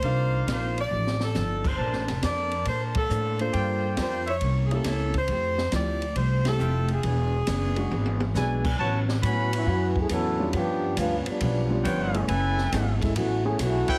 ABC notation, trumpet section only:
X:1
M:4/4
L:1/8
Q:"Swing" 1/4=137
K:F
V:1 name="Trumpet section"
[Bdf]4 z4 | [DBca]4- [DBca] z3 | [Fdg]3 [Ec_de] z4 | z6 [FAeg]2 |
z6 [E=Bd^g]2 | [K:A] [FBca] z [FBcb]3 z3 | z6 [=FBc=g]2 | [EABg]3 z4 [EBc=g] |]